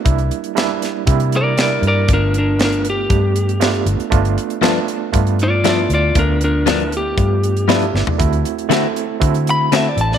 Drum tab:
HH |xxxxx-x-xxx-x-x-|x-x-xxx-x-xxxxxx|xxxxx-x-xxx-x-x-|x-x-xxx-x-xxxx--|
SD |----o-o-----o---|----o-------o---|----o-------o---|----o-------o-o-|
FT |----------------|----------------|----------------|---------------o|
BD |o-------o-------|o-------o-------|o-------o-------|o-------o-------|

HH |xxxxx-x-xxx-x-x-|
SD |----o-------o--o|
FT |----------------|
BD |o-------o-------|